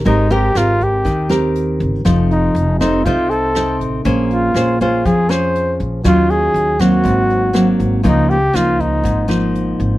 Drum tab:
HH |xxxxxxxx|xxxxxxxx|xxxxxxxx|xxxxxxxx|
SD |--r--r--|r--r--r-|--r--r--|r--r--r-|
BD |o--oo--o|o--oo--o|o--oo--o|o--oo--o|

HH |xxxxxxxx|
SD |--r--r--|
BD |o--oo--o|